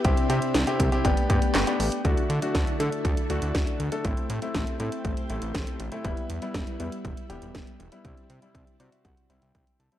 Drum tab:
HH |xxxxxxxxxxxxxxox|xxxxxxxxxxxxxxxx|xxxxxxxxxxxxxxxx|xxxxxxxxxxxxxxxx|
CP |------------x---|----------------|----------------|----------------|
SD |----o-------o---|----o-------o---|----o-------o---|----o-------o---|
BD |o-----o-o-o-----|o---o---o---o---|o---o---o---o---|o---o---o---o---|

HH |xxxxxxxxxxxxxxxx|
CP |----------------|
SD |----------------|
BD |o---o---o---o---|